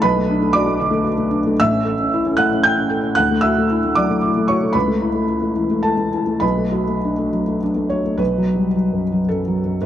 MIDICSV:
0, 0, Header, 1, 2, 480
1, 0, Start_track
1, 0, Key_signature, 2, "minor"
1, 0, Tempo, 524017
1, 33, Time_signature, 3, 2, 24, 8
1, 4834, Tempo, 555042
1, 5314, Tempo, 589971
1, 7234, Tempo, 539568
1, 8715, End_track
2, 0, Start_track
2, 0, Title_t, "Felt piano"
2, 0, Program_c, 0, 0
2, 0, Control_c, 0, 64, 127
2, 16, Note_on_c, 0, 83, 112
2, 19, Note_on_c, 0, 71, 85
2, 25, Note_on_c, 0, 35, 67
2, 49, Control_c, 0, 64, 0
2, 151, Note_on_c, 0, 57, 54
2, 168, Control_c, 0, 64, 127
2, 274, Note_on_c, 0, 62, 56
2, 338, Note_off_c, 0, 57, 0
2, 388, Note_on_c, 0, 57, 52
2, 458, Note_off_c, 0, 62, 0
2, 462, Note_off_c, 0, 71, 0
2, 485, Note_on_c, 0, 86, 100
2, 493, Note_off_c, 0, 83, 0
2, 503, Note_on_c, 0, 74, 80
2, 505, Note_on_c, 0, 66, 54
2, 574, Note_off_c, 0, 57, 0
2, 610, Note_on_c, 0, 57, 49
2, 692, Note_off_c, 0, 66, 0
2, 733, Note_on_c, 0, 50, 52
2, 805, Note_off_c, 0, 57, 0
2, 834, Note_on_c, 0, 57, 58
2, 927, Note_off_c, 0, 50, 0
2, 944, Note_off_c, 0, 74, 0
2, 953, Note_on_c, 0, 66, 53
2, 969, Note_off_c, 0, 86, 0
2, 1037, Note_off_c, 0, 57, 0
2, 1079, Note_on_c, 0, 57, 55
2, 1156, Note_off_c, 0, 66, 0
2, 1197, Note_on_c, 0, 62, 56
2, 1278, Note_off_c, 0, 57, 0
2, 1344, Note_on_c, 0, 57, 47
2, 1398, Note_off_c, 0, 62, 0
2, 1414, Note_off_c, 0, 35, 0
2, 1460, Note_off_c, 0, 57, 0
2, 1462, Note_on_c, 0, 88, 109
2, 1466, Note_on_c, 0, 33, 62
2, 1474, Control_c, 0, 64, 0
2, 1477, Note_on_c, 0, 45, 64
2, 1477, Note_on_c, 0, 76, 84
2, 1582, Note_on_c, 0, 61, 55
2, 1630, Control_c, 0, 64, 127
2, 1693, Note_on_c, 0, 69, 57
2, 1777, Note_off_c, 0, 61, 0
2, 1836, Note_on_c, 0, 61, 47
2, 1894, Note_off_c, 0, 69, 0
2, 1958, Note_on_c, 0, 64, 54
2, 2027, Note_off_c, 0, 61, 0
2, 2074, Note_on_c, 0, 61, 50
2, 2148, Note_off_c, 0, 64, 0
2, 2165, Note_off_c, 0, 76, 0
2, 2168, Note_on_c, 0, 90, 94
2, 2183, Note_on_c, 0, 57, 51
2, 2184, Note_on_c, 0, 78, 74
2, 2194, Note_off_c, 0, 88, 0
2, 2265, Note_off_c, 0, 61, 0
2, 2311, Note_on_c, 0, 61, 53
2, 2378, Note_off_c, 0, 57, 0
2, 2409, Note_off_c, 0, 78, 0
2, 2413, Note_on_c, 0, 91, 104
2, 2418, Note_off_c, 0, 90, 0
2, 2429, Note_on_c, 0, 79, 83
2, 2435, Note_on_c, 0, 64, 54
2, 2500, Note_off_c, 0, 61, 0
2, 2538, Note_on_c, 0, 61, 53
2, 2621, Note_off_c, 0, 64, 0
2, 2660, Note_on_c, 0, 69, 53
2, 2731, Note_off_c, 0, 61, 0
2, 2781, Note_on_c, 0, 61, 47
2, 2852, Note_off_c, 0, 69, 0
2, 2869, Note_off_c, 0, 79, 0
2, 2871, Note_off_c, 0, 33, 0
2, 2876, Note_off_c, 0, 45, 0
2, 2886, Note_on_c, 0, 90, 105
2, 2894, Note_off_c, 0, 91, 0
2, 2899, Note_on_c, 0, 78, 78
2, 2901, Note_off_c, 0, 61, 0
2, 2914, Note_on_c, 0, 38, 64
2, 2918, Control_c, 0, 64, 0
2, 3032, Note_on_c, 0, 57, 53
2, 3042, Control_c, 0, 64, 127
2, 3123, Note_on_c, 0, 88, 99
2, 3124, Note_off_c, 0, 78, 0
2, 3134, Note_off_c, 0, 90, 0
2, 3137, Note_on_c, 0, 76, 72
2, 3147, Note_on_c, 0, 66, 51
2, 3220, Note_off_c, 0, 57, 0
2, 3281, Note_on_c, 0, 57, 47
2, 3337, Note_off_c, 0, 66, 0
2, 3393, Note_on_c, 0, 64, 51
2, 3465, Note_off_c, 0, 57, 0
2, 3527, Note_on_c, 0, 57, 44
2, 3581, Note_off_c, 0, 64, 0
2, 3588, Note_off_c, 0, 76, 0
2, 3615, Note_off_c, 0, 88, 0
2, 3622, Note_on_c, 0, 86, 89
2, 3634, Note_on_c, 0, 54, 44
2, 3636, Note_on_c, 0, 74, 66
2, 3708, Note_off_c, 0, 57, 0
2, 3753, Note_on_c, 0, 57, 49
2, 3821, Note_off_c, 0, 54, 0
2, 3895, Note_on_c, 0, 64, 46
2, 3941, Note_off_c, 0, 57, 0
2, 4008, Note_on_c, 0, 57, 49
2, 4072, Note_off_c, 0, 64, 0
2, 4078, Note_off_c, 0, 74, 0
2, 4102, Note_on_c, 0, 85, 76
2, 4104, Note_off_c, 0, 86, 0
2, 4110, Note_on_c, 0, 73, 59
2, 4120, Note_on_c, 0, 66, 48
2, 4189, Note_off_c, 0, 57, 0
2, 4244, Note_on_c, 0, 57, 45
2, 4306, Note_off_c, 0, 66, 0
2, 4316, Note_off_c, 0, 38, 0
2, 4329, Note_on_c, 0, 83, 86
2, 4332, Note_off_c, 0, 73, 0
2, 4341, Note_on_c, 0, 71, 62
2, 4345, Note_off_c, 0, 85, 0
2, 4347, Note_on_c, 0, 37, 64
2, 4356, Note_off_c, 0, 57, 0
2, 4365, Control_c, 0, 64, 0
2, 4467, Note_on_c, 0, 57, 49
2, 4485, Control_c, 0, 64, 127
2, 4596, Note_on_c, 0, 64, 48
2, 4663, Note_off_c, 0, 57, 0
2, 4720, Note_on_c, 0, 57, 41
2, 4790, Note_off_c, 0, 64, 0
2, 4837, Note_on_c, 0, 64, 47
2, 4910, Note_off_c, 0, 57, 0
2, 4956, Note_on_c, 0, 57, 39
2, 5026, Note_off_c, 0, 64, 0
2, 5078, Note_on_c, 0, 52, 42
2, 5147, Note_off_c, 0, 57, 0
2, 5208, Note_on_c, 0, 57, 42
2, 5269, Note_off_c, 0, 52, 0
2, 5279, Note_off_c, 0, 71, 0
2, 5308, Note_off_c, 0, 83, 0
2, 5309, Note_on_c, 0, 81, 71
2, 5315, Note_on_c, 0, 69, 57
2, 5326, Note_on_c, 0, 64, 45
2, 5392, Note_off_c, 0, 57, 0
2, 5429, Note_on_c, 0, 57, 39
2, 5508, Note_off_c, 0, 64, 0
2, 5562, Note_on_c, 0, 64, 41
2, 5621, Note_off_c, 0, 57, 0
2, 5669, Note_on_c, 0, 57, 38
2, 5750, Note_off_c, 0, 64, 0
2, 5761, Note_off_c, 0, 69, 0
2, 5762, Note_off_c, 0, 37, 0
2, 5775, Note_on_c, 0, 83, 72
2, 5783, Note_on_c, 0, 71, 56
2, 5791, Note_off_c, 0, 81, 0
2, 5791, Note_on_c, 0, 35, 56
2, 5794, Note_off_c, 0, 57, 0
2, 5813, Control_c, 0, 64, 0
2, 5919, Note_on_c, 0, 57, 41
2, 5958, Control_c, 0, 64, 127
2, 6037, Note_on_c, 0, 66, 44
2, 6117, Note_off_c, 0, 57, 0
2, 6167, Note_on_c, 0, 57, 35
2, 6236, Note_off_c, 0, 66, 0
2, 6301, Note_on_c, 0, 62, 40
2, 6360, Note_off_c, 0, 57, 0
2, 6413, Note_on_c, 0, 57, 36
2, 6487, Note_off_c, 0, 62, 0
2, 6529, Note_on_c, 0, 54, 39
2, 6603, Note_off_c, 0, 57, 0
2, 6649, Note_on_c, 0, 57, 40
2, 6721, Note_off_c, 0, 54, 0
2, 6730, Note_off_c, 0, 71, 0
2, 6758, Note_off_c, 0, 83, 0
2, 6781, Note_on_c, 0, 62, 43
2, 6840, Note_off_c, 0, 57, 0
2, 6883, Note_on_c, 0, 57, 40
2, 6965, Note_off_c, 0, 62, 0
2, 6993, Note_on_c, 0, 73, 63
2, 7008, Note_on_c, 0, 66, 39
2, 7075, Note_off_c, 0, 57, 0
2, 7122, Note_on_c, 0, 57, 38
2, 7193, Note_off_c, 0, 66, 0
2, 7202, Note_off_c, 0, 35, 0
2, 7220, Note_on_c, 0, 71, 78
2, 7227, Note_on_c, 0, 35, 45
2, 7230, Note_off_c, 0, 73, 0
2, 7236, Note_off_c, 0, 57, 0
2, 7254, Control_c, 0, 64, 0
2, 7400, Note_on_c, 0, 54, 38
2, 7423, Control_c, 0, 64, 127
2, 7556, Note_on_c, 0, 55, 34
2, 7658, Note_off_c, 0, 54, 0
2, 7719, Note_off_c, 0, 55, 0
2, 7736, Note_on_c, 0, 54, 36
2, 7885, Note_on_c, 0, 42, 31
2, 7984, Note_off_c, 0, 54, 0
2, 8061, Note_on_c, 0, 54, 38
2, 8139, Note_off_c, 0, 42, 0
2, 8192, Note_off_c, 0, 71, 0
2, 8207, Note_on_c, 0, 69, 65
2, 8224, Note_on_c, 0, 42, 40
2, 8307, Note_off_c, 0, 54, 0
2, 8376, Note_on_c, 0, 54, 38
2, 8468, Note_off_c, 0, 42, 0
2, 8530, Note_on_c, 0, 42, 31
2, 8623, Note_off_c, 0, 54, 0
2, 8638, Note_off_c, 0, 35, 0
2, 8678, Note_on_c, 0, 71, 70
2, 8682, Note_off_c, 0, 69, 0
2, 8697, Control_c, 0, 64, 0
2, 8715, Note_off_c, 0, 42, 0
2, 8715, Note_off_c, 0, 71, 0
2, 8715, End_track
0, 0, End_of_file